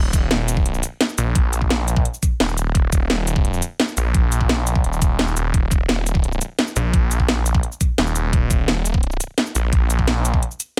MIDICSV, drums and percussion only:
0, 0, Header, 1, 2, 480
1, 0, Start_track
1, 0, Tempo, 348837
1, 1863, Time_signature, 4, 2, 24, 8
1, 14854, End_track
2, 0, Start_track
2, 0, Title_t, "Drums"
2, 183, Note_on_c, 9, 36, 112
2, 183, Note_on_c, 9, 42, 99
2, 183, Note_on_c, 9, 69, 64
2, 321, Note_off_c, 9, 36, 0
2, 321, Note_off_c, 9, 42, 0
2, 321, Note_off_c, 9, 69, 0
2, 424, Note_on_c, 9, 38, 125
2, 424, Note_on_c, 9, 42, 89
2, 561, Note_off_c, 9, 38, 0
2, 561, Note_off_c, 9, 42, 0
2, 663, Note_on_c, 9, 42, 106
2, 663, Note_on_c, 9, 69, 67
2, 783, Note_on_c, 9, 36, 105
2, 801, Note_off_c, 9, 42, 0
2, 801, Note_off_c, 9, 69, 0
2, 903, Note_on_c, 9, 42, 80
2, 921, Note_off_c, 9, 36, 0
2, 1023, Note_on_c, 9, 69, 29
2, 1041, Note_off_c, 9, 42, 0
2, 1143, Note_off_c, 9, 69, 0
2, 1143, Note_on_c, 9, 42, 98
2, 1143, Note_on_c, 9, 69, 60
2, 1280, Note_off_c, 9, 42, 0
2, 1280, Note_off_c, 9, 69, 0
2, 1384, Note_on_c, 9, 38, 121
2, 1384, Note_on_c, 9, 42, 87
2, 1504, Note_on_c, 9, 69, 28
2, 1521, Note_off_c, 9, 38, 0
2, 1521, Note_off_c, 9, 42, 0
2, 1624, Note_off_c, 9, 69, 0
2, 1624, Note_on_c, 9, 42, 102
2, 1624, Note_on_c, 9, 69, 65
2, 1761, Note_off_c, 9, 42, 0
2, 1761, Note_off_c, 9, 69, 0
2, 1863, Note_on_c, 9, 36, 127
2, 1864, Note_on_c, 9, 42, 89
2, 2001, Note_off_c, 9, 36, 0
2, 2001, Note_off_c, 9, 42, 0
2, 2104, Note_on_c, 9, 42, 97
2, 2104, Note_on_c, 9, 69, 59
2, 2223, Note_on_c, 9, 36, 70
2, 2242, Note_off_c, 9, 42, 0
2, 2242, Note_off_c, 9, 69, 0
2, 2345, Note_on_c, 9, 38, 126
2, 2345, Note_on_c, 9, 42, 83
2, 2361, Note_off_c, 9, 36, 0
2, 2483, Note_off_c, 9, 38, 0
2, 2483, Note_off_c, 9, 42, 0
2, 2585, Note_on_c, 9, 42, 102
2, 2585, Note_on_c, 9, 69, 61
2, 2704, Note_on_c, 9, 36, 110
2, 2723, Note_off_c, 9, 42, 0
2, 2723, Note_off_c, 9, 69, 0
2, 2825, Note_on_c, 9, 42, 80
2, 2841, Note_off_c, 9, 36, 0
2, 2944, Note_on_c, 9, 69, 29
2, 2963, Note_off_c, 9, 42, 0
2, 3064, Note_off_c, 9, 69, 0
2, 3064, Note_on_c, 9, 36, 104
2, 3064, Note_on_c, 9, 42, 98
2, 3064, Note_on_c, 9, 69, 59
2, 3201, Note_off_c, 9, 36, 0
2, 3202, Note_off_c, 9, 42, 0
2, 3202, Note_off_c, 9, 69, 0
2, 3304, Note_on_c, 9, 38, 127
2, 3304, Note_on_c, 9, 42, 83
2, 3424, Note_on_c, 9, 69, 27
2, 3442, Note_off_c, 9, 38, 0
2, 3442, Note_off_c, 9, 42, 0
2, 3544, Note_off_c, 9, 69, 0
2, 3544, Note_on_c, 9, 42, 99
2, 3544, Note_on_c, 9, 69, 60
2, 3682, Note_off_c, 9, 42, 0
2, 3682, Note_off_c, 9, 69, 0
2, 3784, Note_on_c, 9, 36, 127
2, 3784, Note_on_c, 9, 42, 87
2, 3921, Note_off_c, 9, 36, 0
2, 3922, Note_off_c, 9, 42, 0
2, 4024, Note_on_c, 9, 36, 113
2, 4024, Note_on_c, 9, 42, 95
2, 4024, Note_on_c, 9, 69, 58
2, 4161, Note_off_c, 9, 36, 0
2, 4162, Note_off_c, 9, 42, 0
2, 4162, Note_off_c, 9, 69, 0
2, 4264, Note_on_c, 9, 38, 127
2, 4264, Note_on_c, 9, 42, 83
2, 4401, Note_off_c, 9, 38, 0
2, 4401, Note_off_c, 9, 42, 0
2, 4504, Note_on_c, 9, 42, 96
2, 4504, Note_on_c, 9, 69, 62
2, 4624, Note_on_c, 9, 36, 113
2, 4641, Note_off_c, 9, 42, 0
2, 4641, Note_off_c, 9, 69, 0
2, 4744, Note_on_c, 9, 42, 75
2, 4761, Note_off_c, 9, 36, 0
2, 4864, Note_on_c, 9, 69, 28
2, 4882, Note_off_c, 9, 42, 0
2, 4984, Note_off_c, 9, 69, 0
2, 4984, Note_on_c, 9, 42, 92
2, 4984, Note_on_c, 9, 69, 58
2, 5121, Note_off_c, 9, 42, 0
2, 5121, Note_off_c, 9, 69, 0
2, 5223, Note_on_c, 9, 38, 127
2, 5223, Note_on_c, 9, 42, 86
2, 5345, Note_on_c, 9, 69, 26
2, 5361, Note_off_c, 9, 38, 0
2, 5361, Note_off_c, 9, 42, 0
2, 5464, Note_off_c, 9, 69, 0
2, 5464, Note_on_c, 9, 42, 100
2, 5464, Note_on_c, 9, 69, 61
2, 5601, Note_off_c, 9, 42, 0
2, 5601, Note_off_c, 9, 69, 0
2, 5703, Note_on_c, 9, 36, 126
2, 5703, Note_on_c, 9, 42, 85
2, 5840, Note_off_c, 9, 42, 0
2, 5841, Note_off_c, 9, 36, 0
2, 5943, Note_on_c, 9, 42, 88
2, 5943, Note_on_c, 9, 69, 57
2, 6063, Note_on_c, 9, 36, 71
2, 6081, Note_off_c, 9, 42, 0
2, 6081, Note_off_c, 9, 69, 0
2, 6183, Note_on_c, 9, 38, 127
2, 6183, Note_on_c, 9, 42, 81
2, 6201, Note_off_c, 9, 36, 0
2, 6321, Note_off_c, 9, 38, 0
2, 6321, Note_off_c, 9, 42, 0
2, 6424, Note_on_c, 9, 42, 99
2, 6424, Note_on_c, 9, 69, 60
2, 6543, Note_on_c, 9, 36, 106
2, 6561, Note_off_c, 9, 42, 0
2, 6561, Note_off_c, 9, 69, 0
2, 6663, Note_on_c, 9, 42, 75
2, 6681, Note_off_c, 9, 36, 0
2, 6784, Note_on_c, 9, 69, 27
2, 6800, Note_off_c, 9, 42, 0
2, 6903, Note_on_c, 9, 36, 106
2, 6904, Note_off_c, 9, 69, 0
2, 6904, Note_on_c, 9, 42, 93
2, 6904, Note_on_c, 9, 69, 58
2, 7041, Note_off_c, 9, 36, 0
2, 7042, Note_off_c, 9, 42, 0
2, 7042, Note_off_c, 9, 69, 0
2, 7143, Note_on_c, 9, 38, 124
2, 7143, Note_on_c, 9, 42, 78
2, 7264, Note_on_c, 9, 69, 26
2, 7280, Note_off_c, 9, 38, 0
2, 7280, Note_off_c, 9, 42, 0
2, 7384, Note_off_c, 9, 69, 0
2, 7384, Note_on_c, 9, 42, 92
2, 7384, Note_on_c, 9, 69, 58
2, 7521, Note_off_c, 9, 42, 0
2, 7521, Note_off_c, 9, 69, 0
2, 7623, Note_on_c, 9, 36, 117
2, 7623, Note_on_c, 9, 42, 81
2, 7761, Note_off_c, 9, 36, 0
2, 7761, Note_off_c, 9, 42, 0
2, 7863, Note_on_c, 9, 36, 112
2, 7863, Note_on_c, 9, 42, 91
2, 7863, Note_on_c, 9, 69, 55
2, 8001, Note_off_c, 9, 36, 0
2, 8001, Note_off_c, 9, 42, 0
2, 8001, Note_off_c, 9, 69, 0
2, 8104, Note_on_c, 9, 38, 125
2, 8104, Note_on_c, 9, 42, 82
2, 8242, Note_off_c, 9, 38, 0
2, 8242, Note_off_c, 9, 42, 0
2, 8346, Note_on_c, 9, 42, 94
2, 8346, Note_on_c, 9, 69, 60
2, 8463, Note_on_c, 9, 36, 106
2, 8483, Note_off_c, 9, 42, 0
2, 8483, Note_off_c, 9, 69, 0
2, 8583, Note_on_c, 9, 42, 75
2, 8601, Note_off_c, 9, 36, 0
2, 8704, Note_on_c, 9, 69, 26
2, 8721, Note_off_c, 9, 42, 0
2, 8823, Note_off_c, 9, 69, 0
2, 8823, Note_on_c, 9, 42, 93
2, 8823, Note_on_c, 9, 69, 60
2, 8961, Note_off_c, 9, 42, 0
2, 8961, Note_off_c, 9, 69, 0
2, 9063, Note_on_c, 9, 38, 119
2, 9063, Note_on_c, 9, 42, 80
2, 9184, Note_on_c, 9, 69, 25
2, 9200, Note_off_c, 9, 38, 0
2, 9200, Note_off_c, 9, 42, 0
2, 9304, Note_off_c, 9, 69, 0
2, 9304, Note_on_c, 9, 42, 92
2, 9304, Note_on_c, 9, 69, 59
2, 9442, Note_off_c, 9, 42, 0
2, 9442, Note_off_c, 9, 69, 0
2, 9543, Note_on_c, 9, 36, 121
2, 9544, Note_on_c, 9, 42, 81
2, 9680, Note_off_c, 9, 36, 0
2, 9681, Note_off_c, 9, 42, 0
2, 9784, Note_on_c, 9, 42, 86
2, 9784, Note_on_c, 9, 69, 58
2, 9903, Note_on_c, 9, 36, 62
2, 9922, Note_off_c, 9, 42, 0
2, 9922, Note_off_c, 9, 69, 0
2, 10024, Note_on_c, 9, 38, 118
2, 10024, Note_on_c, 9, 42, 80
2, 10041, Note_off_c, 9, 36, 0
2, 10162, Note_off_c, 9, 38, 0
2, 10162, Note_off_c, 9, 42, 0
2, 10264, Note_on_c, 9, 42, 90
2, 10264, Note_on_c, 9, 69, 60
2, 10383, Note_on_c, 9, 36, 106
2, 10402, Note_off_c, 9, 42, 0
2, 10402, Note_off_c, 9, 69, 0
2, 10503, Note_on_c, 9, 42, 74
2, 10521, Note_off_c, 9, 36, 0
2, 10624, Note_on_c, 9, 69, 28
2, 10641, Note_off_c, 9, 42, 0
2, 10743, Note_on_c, 9, 36, 100
2, 10744, Note_off_c, 9, 69, 0
2, 10744, Note_on_c, 9, 42, 89
2, 10744, Note_on_c, 9, 69, 58
2, 10881, Note_off_c, 9, 36, 0
2, 10882, Note_off_c, 9, 42, 0
2, 10882, Note_off_c, 9, 69, 0
2, 10983, Note_on_c, 9, 38, 122
2, 10983, Note_on_c, 9, 42, 77
2, 11103, Note_on_c, 9, 69, 26
2, 11121, Note_off_c, 9, 38, 0
2, 11121, Note_off_c, 9, 42, 0
2, 11222, Note_off_c, 9, 69, 0
2, 11222, Note_on_c, 9, 42, 91
2, 11222, Note_on_c, 9, 69, 61
2, 11360, Note_off_c, 9, 42, 0
2, 11360, Note_off_c, 9, 69, 0
2, 11463, Note_on_c, 9, 36, 112
2, 11463, Note_on_c, 9, 42, 83
2, 11601, Note_off_c, 9, 36, 0
2, 11601, Note_off_c, 9, 42, 0
2, 11704, Note_on_c, 9, 36, 104
2, 11704, Note_on_c, 9, 42, 89
2, 11704, Note_on_c, 9, 69, 62
2, 11841, Note_off_c, 9, 36, 0
2, 11841, Note_off_c, 9, 42, 0
2, 11841, Note_off_c, 9, 69, 0
2, 11944, Note_on_c, 9, 38, 117
2, 11944, Note_on_c, 9, 42, 85
2, 12082, Note_off_c, 9, 38, 0
2, 12082, Note_off_c, 9, 42, 0
2, 12185, Note_on_c, 9, 42, 99
2, 12185, Note_on_c, 9, 69, 64
2, 12304, Note_on_c, 9, 36, 99
2, 12322, Note_off_c, 9, 42, 0
2, 12322, Note_off_c, 9, 69, 0
2, 12425, Note_on_c, 9, 42, 74
2, 12441, Note_off_c, 9, 36, 0
2, 12545, Note_on_c, 9, 69, 27
2, 12562, Note_off_c, 9, 42, 0
2, 12664, Note_off_c, 9, 69, 0
2, 12664, Note_on_c, 9, 42, 88
2, 12664, Note_on_c, 9, 69, 63
2, 12802, Note_off_c, 9, 42, 0
2, 12802, Note_off_c, 9, 69, 0
2, 12903, Note_on_c, 9, 38, 115
2, 12903, Note_on_c, 9, 42, 81
2, 13025, Note_on_c, 9, 69, 28
2, 13041, Note_off_c, 9, 38, 0
2, 13041, Note_off_c, 9, 42, 0
2, 13144, Note_off_c, 9, 69, 0
2, 13144, Note_on_c, 9, 42, 91
2, 13144, Note_on_c, 9, 69, 65
2, 13282, Note_off_c, 9, 42, 0
2, 13282, Note_off_c, 9, 69, 0
2, 13384, Note_on_c, 9, 36, 118
2, 13384, Note_on_c, 9, 42, 87
2, 13521, Note_off_c, 9, 36, 0
2, 13521, Note_off_c, 9, 42, 0
2, 13624, Note_on_c, 9, 42, 100
2, 13624, Note_on_c, 9, 69, 63
2, 13743, Note_on_c, 9, 36, 67
2, 13761, Note_off_c, 9, 42, 0
2, 13761, Note_off_c, 9, 69, 0
2, 13863, Note_on_c, 9, 38, 117
2, 13863, Note_on_c, 9, 42, 87
2, 13881, Note_off_c, 9, 36, 0
2, 14001, Note_off_c, 9, 38, 0
2, 14001, Note_off_c, 9, 42, 0
2, 14105, Note_on_c, 9, 42, 104
2, 14105, Note_on_c, 9, 69, 65
2, 14224, Note_on_c, 9, 36, 103
2, 14242, Note_off_c, 9, 42, 0
2, 14242, Note_off_c, 9, 69, 0
2, 14346, Note_on_c, 9, 42, 78
2, 14361, Note_off_c, 9, 36, 0
2, 14465, Note_on_c, 9, 69, 30
2, 14483, Note_off_c, 9, 42, 0
2, 14585, Note_off_c, 9, 69, 0
2, 14585, Note_on_c, 9, 42, 96
2, 14585, Note_on_c, 9, 69, 63
2, 14723, Note_off_c, 9, 42, 0
2, 14723, Note_off_c, 9, 69, 0
2, 14854, End_track
0, 0, End_of_file